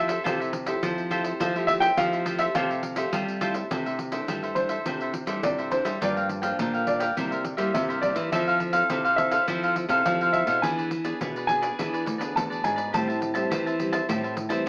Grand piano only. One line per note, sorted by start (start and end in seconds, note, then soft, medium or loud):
0.00 0.49 E5 medium
1.67 1.72 E5 loud
1.80 1.97 G5 loud
1.98 2.43 F5 loud
2.39 2.44 E5 medium
2.55 3.38 F5 medium
4.55 5.39 C5 medium
5.43 5.72 D5 medium
5.72 6.00 C5 medium
6.03 6.85 D5 medium
6.87 7.70 D5 medium
7.74 8.02 E5 medium
8.02 8.31 D5 medium
8.32 9.15 E5 medium
9.16 10.00 E5 medium
10.06 10.33 F5 medium
10.33 10.61 E5 medium
10.62 11.45 G#5 medium
11.47 12.31 G#5 medium
12.36 12.64 A5 medium
12.64 12.92 G#5 medium
12.94 13.76 A5 medium